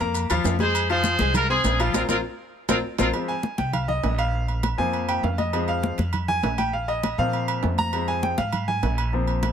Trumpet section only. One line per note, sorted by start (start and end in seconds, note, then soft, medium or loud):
0.61 0.89 G#4 medium
0.61 0.88 C5 loud
0.91 1.32 G#4 medium
0.91 1.32 C5 loud
1.35 1.49 F4 medium
1.35 1.49 A#4 loud
1.50 1.78 F4 medium
1.50 1.77 G#4 loud
1.81 1.94 C4 medium
1.81 1.93 F4 medium
1.95 2.02 C4 medium
1.95 2.02 F4 medium
1.95 2.02 A#4 medium
2.10 2.17 C4 loud
2.10 2.17 F4 loud
2.10 2.17 A#4 loud
2.70 2.77 C4 loud
2.70 2.77 F4 loud
2.70 2.77 A#4 loud
3.00 3.07 C4 medium
3.00 3.07 F4 loud
3.00 3.07 A#4 medium